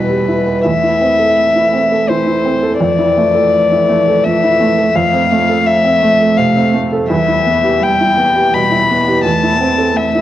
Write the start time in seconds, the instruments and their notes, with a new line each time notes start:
Already playing: felt piano E2 B2 E4 G4 B4, cello G3, violin B4
0.10 felt piano G4
0.28 felt piano E4
0.47 felt piano B4
0.65 felt piano E2, cello A3, violin E5
0.83 felt piano E4
1.01 felt piano C4
1.19 felt piano A4
1.55 felt piano E4
1.73 felt piano C4
1.92 felt piano A4
2.09 felt piano E3, violin C5
2.27 felt piano E4
2.45 felt piano C4
2.63 felt piano A4
2.80 felt piano F2, cello E3, violin D5
2.99 felt piano E4
3.18 felt piano A3
3.35 felt piano A4
3.72 felt piano E4
3.90 felt piano A3
4.08 felt piano A4
4.24 felt piano F3, violin E5
4.44 felt piano E4
4.61 felt piano A3
4.78 felt piano A4
4.96 felt piano F2, cello A3, violin F5
5.13 felt piano C4
5.32 felt piano A3
5.49 felt piano A4
5.66 violin E5
5.84 felt piano C4
6.03 felt piano A3
6.20 felt piano A4
6.37 felt piano C3, violin F5
6.55 felt piano C4
6.74 felt piano A3
6.93 felt piano A4
7.10 felt piano E2, cello G3, violin E5
7.28 felt piano E4
7.45 cello E3, felt piano B3
7.64 felt piano G4
7.80 cello G3, violin G5
8.01 felt piano E4
8.17 cello E3, felt piano B3
8.36 felt piano G4
8.53 felt piano B2, cello G3, violin B5
8.71 felt piano E4
8.89 cello E3, felt piano B3
9.08 felt piano G4
9.25 felt piano E2, cello A3, violin A5
9.43 felt piano E4
9.60 cello C4, felt piano C4
9.78 felt piano A4
9.96 cello A3, violin E5
10.15 felt piano E4